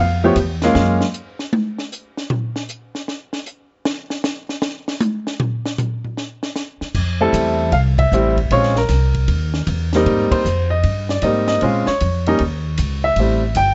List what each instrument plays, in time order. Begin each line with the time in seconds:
Already playing: upright bass F2
0.00 grand piano F5
0.24 grand piano F3 A3 B3 G4 C#5
0.36 upright bass E2, hi-hat pedal, ride
0.62 grand piano G#3 A#3 C#4 F4, snare, ride
0.75 upright bass F#2, snare
1.01 snare
1.14 hi-hat pedal
1.39 snare
1.53 high tom
1.78 snare
1.92 hi-hat pedal
2.17 snare
2.30 floor tom
2.56 snare
2.69 hi-hat pedal
2.95 snare
3.08 snare
3.33 snare
3.46 hi-hat pedal
3.85 snare
4.10 snare
4.24 snare, hi-hat pedal
4.49 snare
4.62 snare
4.88 snare
5.01 hi-hat pedal, high tom
5.27 snare
5.40 floor tom
5.66 snare
5.78 floor tom, hi-hat pedal
6.05 floor tom
6.17 snare
6.43 snare
6.56 snare, hi-hat pedal
6.81 muted upright bass stroke, snare
6.95 upright bass F2, kick, crash
7.21 grand piano G3 A3 C4 E4 A4
7.33 upright bass E2, hi-hat pedal, ride
7.72 upright bass C2, grand piano F5, ride
7.98 grand piano E5, kick, ride
8.12 upright bass A1, grand piano G3 A3 C4 E4, hi-hat pedal
8.37 kick, ride
8.51 upright bass A#1, grand piano G#3 C4 C#4 F4 C#5, ride
8.63 snare
8.76 grand piano A#4, snare
8.89 upright bass C2, snare, hi-hat pedal, ride
9.15 kick, ride
9.28 upright bass D#2, ride
9.54 snare
9.67 upright bass E2, hi-hat pedal, ride
9.93 grand piano G3 A#3 C4 D#4, snare, ride
10.06 upright bass G#2, ride
10.31 grand piano C5, muted upright bass stroke, kick, ride
10.45 upright bass F2, hi-hat pedal
10.70 grand piano D#5
10.83 upright bass G2, ride
11.09 grand piano D5, snare
11.22 upright bass G#2, grand piano G3 A#3 C4 D#4 D#5, hi-hat pedal, ride
11.48 grand piano D#5, snare, ride
11.61 upright bass A#2, grand piano G#3 C4 C#4 F4, ride
11.86 grand piano C#5, muted upright bass stroke, snare
12.00 upright bass F2, hi-hat pedal, ride
12.26 grand piano G3 A#3 C#4 D#4, ride
12.39 upright bass D#2, ride
12.78 upright bass C#2, hi-hat pedal, ride
13.04 grand piano E5
13.16 upright bass A1, grand piano G3 A3 C4 E4, ride
13.55 upright bass G1, grand piano G5, hi-hat pedal, ride